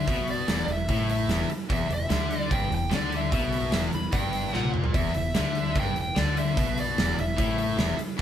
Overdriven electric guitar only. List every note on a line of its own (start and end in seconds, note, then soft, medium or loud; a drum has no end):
0.09 0.48 B2 loud
0.48 0.67 E2 medium
0.69 0.85 E2 medium
0.89 1.29 A2 loud
1.30 1.49 E2 loud
1.51 muted overdriven electric guitar stroke medium
1.70 1.89 E2 loud
1.90 2.06 E2 medium
2.10 2.50 D3 medium
2.51 2.70 G2 medium
2.71 2.87 E2 medium
2.91 3.31 D3 medium
3.33 3.72 B2 medium
3.71 3.92 E2 medium
3.93 4.09 E2 medium
4.13 4.53 G2 medium
4.53 4.94 A#2 medium
4.94 5.14 E2 loud
5.15 5.31 E2 medium
5.35 5.75 D3 medium
5.76 5.95 G2 medium
5.96 6.12 E2 medium
6.16 6.57 D3 medium
6.57 6.97 B2 loud
6.98 7.17 E2 medium
7.18 7.34 E2 medium
7.37 7.78 A2 loud
7.78 7.96 E2 medium
7.97 muted overdriven electric guitar stroke medium
8.18 8.21 E2 loud